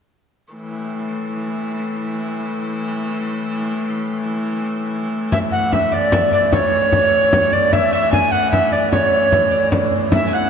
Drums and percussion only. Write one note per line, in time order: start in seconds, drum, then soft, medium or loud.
5.32 frame drum medium
5.52 frame drum soft
5.73 frame drum medium
5.93 frame drum soft
6.12 frame drum medium
6.32 frame drum soft
6.52 frame drum medium
6.92 frame drum medium
7.13 frame drum soft
7.33 frame drum medium
7.53 frame drum soft
7.73 frame drum medium
8.13 frame drum medium
8.33 frame drum soft
8.53 frame drum medium
8.73 frame drum soft
8.92 frame drum medium
9.32 frame drum medium
9.52 frame drum soft
9.72 frame drum medium
9.92 frame drum soft
10.12 frame drum medium
10.33 frame drum soft